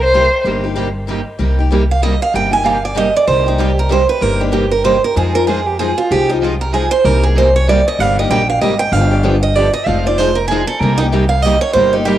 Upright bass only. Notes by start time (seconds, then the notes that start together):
Already playing: C2
0.44 G1
1.39 C2
2.34 G1
3.28 C2
4.22 G1
5.16 F2
6.11 C2
7.05 C2
7.99 G1
8.30 A#1
8.61 G#1
8.92 G1
9.86 F1
10.81 C2
11.75 G1